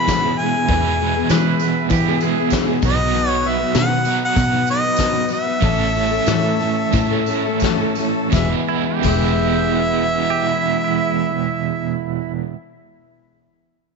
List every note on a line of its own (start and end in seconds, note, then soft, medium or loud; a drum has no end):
0.00 0.67 E2 medium
0.00 0.67 B2 medium
0.00 0.53 E3 loud
0.00 0.68 E3 medium
0.00 0.68 G#3 medium
0.00 0.70 B3 medium
0.00 0.69 E4 medium
0.00 2.79 B4 medium
0.00 2.79 E5 medium
0.00 0.40 B5 loud
0.00 2.79 E6 medium
0.08 0.24 E3 medium
0.08 0.24 G#3 medium
0.08 0.24 B3 medium
0.08 0.24 E4 medium
0.08 0.23 G#4 medium
0.08 kick medium
0.08 snare loud
0.08 open hi-hat medium
0.08 tambourine loud
0.25 0.40 B3 soft
0.25 0.40 E4 medium
0.25 0.39 G#4 medium
0.38 0.55 G#3 medium
0.38 0.55 B3 medium
0.38 0.55 E4 medium
0.38 1.30 G#5 medium
0.38 open hi-hat medium
0.42 0.53 G#4 medium
0.55 0.71 B3 soft
0.55 0.70 E4 soft
0.55 0.70 G#4 medium
0.68 1.88 E2 loud
0.68 1.22 E2 loud
0.68 1.89 B2 loud
0.68 1.90 E3 medium
0.68 1.01 E3 medium
0.68 1.90 G#3 loud
0.68 1.00 G#3 medium
0.68 1.92 B3 loud
0.68 1.91 E4 loud
0.68 kick loud
0.68 open hi-hat medium
0.72 1.01 B3 medium
0.72 1.01 E4 medium
0.72 1.01 G#4 medium
0.99 1.16 G#3 medium
0.99 1.16 B3 medium
0.99 1.16 E4 medium
0.99 1.15 G#4 medium
0.99 open hi-hat medium
1.16 1.30 B3 medium
1.16 1.31 E4 medium
1.16 1.30 G#4 medium
1.30 1.83 E3 loud
1.30 1.61 E3 loud
1.30 1.60 G#3 medium
1.30 1.61 B3 loud
1.30 1.62 E4 loud
1.30 1.62 G#4 loud
1.30 1.90 B4 medium
1.30 snare loud
1.30 open hi-hat medium
1.30 tambourine loud
1.59 2.07 G#3 medium
1.59 2.07 B3 medium
1.59 2.08 E4 medium
1.59 open hi-hat medium
1.59 tambourine medium
1.63 2.07 G#4 medium
1.90 2.80 E2 medium
1.90 2.80 B2 medium
1.90 2.70 E3 loud
1.90 2.81 E3 medium
1.90 2.81 G#3 medium
1.90 2.81 B3 medium
1.90 2.82 E4 medium
1.90 2.21 G4 medium
1.90 kick loud
1.90 open hi-hat medium
1.90 tambourine medium
2.08 2.21 B3 medium
2.08 2.22 E4 medium
2.08 2.23 G#4 medium
2.21 2.37 G#3 medium
2.21 2.38 B3 medium
2.21 2.38 E4 medium
2.21 2.52 G#4 medium
2.21 2.37 G#4 medium
2.21 open hi-hat medium
2.21 tambourine medium
2.38 2.53 B3 medium
2.38 2.54 E4 medium
2.38 2.53 G#4 medium
2.50 2.68 E3 medium
2.50 2.69 G#3 loud
2.50 kick medium
2.50 snare loud
2.50 open hi-hat loud
2.50 tambourine loud
2.55 2.69 B3 medium
2.55 2.68 E4 medium
2.55 2.67 G#4 loud
2.68 2.83 B3 medium
2.68 2.84 E4 medium
2.68 2.83 G#4 medium
2.81 3.63 B1 loud
2.81 4.03 B2 medium
2.81 4.03 F#3 medium
2.81 2.99 F#3 medium
2.81 4.03 B3 loud
2.81 2.99 B3 medium
2.81 4.04 D#4 loud
2.81 4.03 F#4 loud
2.81 5.61 D#6 medium
2.81 kick loud
2.81 open hi-hat medium
2.81 tambourine medium
2.85 2.98 D#4 medium
2.85 5.61 B4 medium
2.85 2.97 B4 medium
2.85 3.29 D#5 loud
2.85 5.61 F#5 medium
2.99 3.14 F#3 medium
2.99 3.14 B3 soft
2.99 3.14 D#4 soft
2.99 3.14 B4 medium
3.13 3.44 B2 medium
3.13 3.44 D#3 medium
3.13 3.42 F#3 medium
3.13 3.44 B3 medium
3.13 3.44 D#4 medium
3.13 3.45 B4 medium
3.13 open hi-hat medium
3.29 3.49 C#5 loud
3.43 3.59 F#3 medium
3.43 3.60 B3 medium
3.43 3.60 D#4 medium
3.43 3.59 B4 medium
3.43 open hi-hat medium
3.48 3.77 E5 loud
3.60 3.76 F#3 medium
3.60 3.75 B3 medium
3.60 3.75 D#4 medium
3.60 3.75 B4 medium
3.74 4.29 B2 loud
3.74 4.06 B2 medium
3.74 4.06 D#3 medium
3.74 4.05 F#3 loud
3.74 4.06 B3 medium
3.74 4.06 D#4 loud
3.74 4.06 B4 loud
3.74 4.20 F#5 loud
3.74 snare loud
3.74 open hi-hat medium
3.74 tambourine loud
4.04 4.52 F#3 medium
4.04 5.30 F#3 medium
4.04 4.53 B3 medium
4.04 5.30 B3 medium
4.04 5.29 D#4 medium
4.04 4.52 D#4 medium
4.04 5.28 F#4 medium
4.04 open hi-hat medium
4.04 tambourine medium
4.08 5.30 B2 medium
4.08 4.51 B4 medium
4.25 4.67 F#5 loud
4.36 5.46 B2 loud
4.36 kick loud
4.36 snare soft
4.36 open hi-hat medium
4.36 tambourine medium
4.52 4.67 F#3 soft
4.52 4.68 B3 medium
4.52 4.68 D#4 medium
4.52 4.68 B4 medium
4.67 4.84 F#3 medium
4.67 4.84 B3 medium
4.67 4.83 D#4 medium
4.67 5.28 D#5 loud
4.67 open hi-hat medium
4.67 tambourine medium
4.71 4.82 B4 medium
4.83 4.99 F#3 soft
4.83 4.99 B3 soft
4.83 5.00 D#4 medium
4.83 4.99 B4 medium
4.97 5.15 B2 medium
4.97 5.15 D#3 medium
4.97 5.15 F#3 medium
4.97 5.15 B3 loud
4.97 kick medium
4.97 snare loud
4.97 open hi-hat medium
4.97 tambourine loud
5.01 5.14 D#4 loud
5.01 5.13 B4 medium
5.15 5.28 F#3 medium
5.15 5.29 B3 medium
5.15 5.30 D#4 medium
5.15 5.31 B4 medium
5.29 5.46 F#3 medium
5.29 5.46 B3 medium
5.29 5.46 D#4 medium
5.29 5.45 B4 medium
5.29 open hi-hat medium
5.29 tambourine medium
5.33 7.60 E5 loud
5.46 5.62 F#3 soft
5.46 5.63 B3 soft
5.46 5.63 D#4 soft
5.46 5.62 B4 medium
5.61 6.19 A1 loud
5.61 6.91 A2 medium
5.61 5.95 A2 medium
5.61 6.91 E3 loud
5.61 5.95 E3 medium
5.61 5.94 A3 medium
5.61 6.92 A3 loud
5.61 5.94 C#4 medium
5.61 6.92 C#4 loud
5.61 5.95 E4 medium
5.61 5.95 A4 medium
5.61 6.93 A4 loud
5.61 8.31 C#5 medium
5.61 8.31 E5 medium
5.61 8.30 A5 medium
5.61 8.31 E6 medium
5.61 kick loud
5.61 open hi-hat medium
5.61 tambourine soft
5.95 6.11 A3 medium
5.95 6.11 C#4 medium
5.95 6.11 E4 medium
5.95 6.09 A4 medium
5.95 open hi-hat medium
5.95 tambourine soft
6.10 6.26 A3 soft
6.10 6.26 C#4 medium
6.10 6.28 E4 medium
6.10 6.27 A4 medium
6.26 6.60 A2 medium
6.26 6.85 A2 loud
6.26 6.61 E3 loud
6.26 6.59 A3 loud
6.26 6.60 C#4 loud
6.26 6.60 E4 loud
6.26 6.61 A4 loud
6.26 snare loud
6.26 open hi-hat medium
6.26 tambourine loud
6.60 7.11 A3 medium
6.60 7.11 C#4 medium
6.60 7.10 E4 medium
6.60 7.09 A4 medium
6.60 open hi-hat medium
6.92 8.30 A2 medium
6.92 8.15 A2 loud
6.92 8.30 E3 medium
6.92 8.31 A3 medium
6.92 8.31 C#4 medium
6.92 8.31 A4 medium
6.92 kick loud
6.92 snare soft
6.92 open hi-hat medium
6.92 tambourine medium
7.11 7.26 A3 medium
7.11 7.28 C#4 medium
7.11 7.28 E4 medium
7.11 7.28 A4 medium
7.26 7.45 A3 medium
7.26 7.46 C#4 medium
7.26 7.46 E4 medium
7.26 open hi-hat medium
7.26 tambourine medium
7.30 7.44 A4 medium
7.45 7.61 A3 medium
7.45 7.62 C#4 medium
7.45 7.62 E4 medium
7.45 7.62 A4 medium
7.60 7.79 A2 medium
7.60 7.80 E3 medium
7.60 7.80 A3 medium
7.60 7.80 C#4 medium
7.60 7.80 E4 loud
7.60 7.79 A4 loud
7.60 kick medium
7.60 open hi-hat loud
7.60 tambourine loud
7.64 snare loud
7.81 7.96 A3 medium
7.81 7.97 C#4 medium
7.81 7.98 E4 medium
7.81 7.98 A4 medium
7.95 8.32 A3 medium
7.95 8.33 C#4 medium
7.95 8.34 E4 medium
7.95 open hi-hat medium
7.95 tambourine medium
7.99 8.34 A4 medium
8.30 8.53 E1 medium
8.30 9.02 E2 loud
8.30 9.03 B2 medium
8.30 9.02 E3 medium
8.30 9.03 E3 loud
8.30 9.04 G#3 medium
8.30 9.04 G#3 loud
8.30 11.32 G#3 medium
8.30 9.05 B3 loud
8.30 11.32 B3 medium
8.30 9.05 B3 medium
8.30 8.53 E5 medium
8.30 11.32 E5 medium
8.30 kick loud
8.30 tambourine medium
8.34 11.32 E3 medium
8.34 9.06 E4 loud
8.34 9.06 E4 medium
8.34 11.86 G#4 loud
8.34 snare medium
8.69 8.86 E4 medium
8.87 9.83 G4 medium
9.02 12.02 E1 loud
9.02 12.52 E2 loud
9.02 12.53 B2 loud
9.02 12.52 E3 medium
9.02 12.53 E3 loud
9.02 12.55 G#3 loud
9.02 12.55 B3 loud
9.02 12.56 B3 loud
9.02 kick loud
9.02 crash medium
9.02 tambourine medium
9.06 12.56 E4 loud
9.06 12.57 E4 medium
9.06 11.97 E5 loud
9.83 10.26 E4 medium
10.30 10.48 G4 medium
10.49 10.83 E4 loud
10.84 12.32 E4 loud